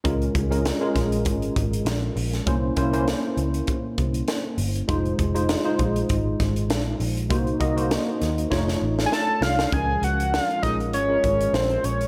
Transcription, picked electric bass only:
X:1
M:4/4
L:1/16
Q:"Swing 16ths" 1/4=99
K:Db
V:1 name="Picked electric bass" clef=bass
D,,2 D,,3 z B,,,2 A,,,2 A,,,2 B,,,2 B,,,2 | C,,2 C,,3 z D,,2 z2 C,,2 z2 =G,,,2 | F,,,2 F,,,3 z B,,,2 A,,,2 A,,,2 B,,,2 B,,,2 | C,,2 C,,3 z E,,2 F,,,2 =A,,,2 z2 C,,2 |
D,,2 D,,3 z B,,,2 A,,,2 A,,,2 B,,,2 B,,,2 |]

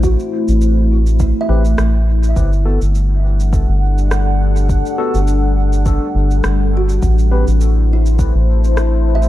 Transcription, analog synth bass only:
X:1
M:4/4
L:1/16
Q:"Swing 16ths" 1/4=103
K:Ador
V:1 name="Analog synth bass" clef=bass
A,,, z2 A,,,6 z A,,,2 A,,,4 | G,,,3 G,,,6 G,,,6- G,,,- | G,,, z2 G,,,6 z G,,,2 G,,,4 | A,,,3 A,,,6 A,,,6- A,,, |]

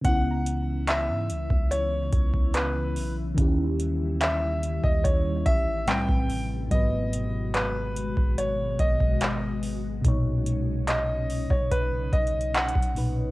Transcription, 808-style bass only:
X:1
M:4/4
L:1/16
Q:1/4=72
K:C#dor
V:1 name="808-style bass" clef=bass
C,,4- C,, G,, C,, C,,3 C,,4 B,,,2 | D,,6- D,, D,,3 =A,,,2 =C,, A,,,3 | G,,,6- G,,, G,,,3 G,,,6 | B,,,6- B,,, B,,,3 B,,,3 B,,,3 |]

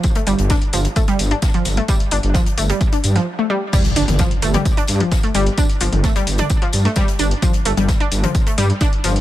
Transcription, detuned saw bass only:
X:1
M:4/4
L:1/16
Q:1/4=130
K:Cdor
V:1 name="Detuned saw bass" clef=bass
z2 G,,, G,,, z2 G,,, z3 G,,, z3 G,,, z | z2 G,,, G,,, z2 G,,, z3 G,, z4 z | z2 G,,, G,,, z2 G,,, z3 G,, z3 G,,, z | z2 G,,, G,,, z2 G,,, z3 G,, z3 G,,, z |
z2 G,,, G,,, z2 G,,, z3 G,, z3 G,,, z |]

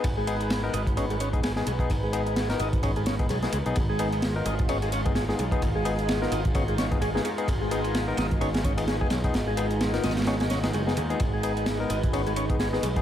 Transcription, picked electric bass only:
X:1
M:4/4
L:1/16
Q:"Swing 16ths" 1/4=129
K:G#dor
V:1 name="Picked electric bass" clef=bass
G,,,4- G,,, z G,,,6- G,,, z B,,, z | G,,,4- G,,, z G,,,6 B,,, z C,, B,,, | G,,,4- G,,, z G,,,6- G,,, z B,,, z | G,,,4- G,,, z G,,,6- G,,, z3 |
G,,,4- G,,, z G,,,6- G,,, z B,,, z | G,,,4- G,,, z G,,,6 F,,,2 D,, z | G,,,4- G,,, z G,,,6- G,,, z B,,, z |]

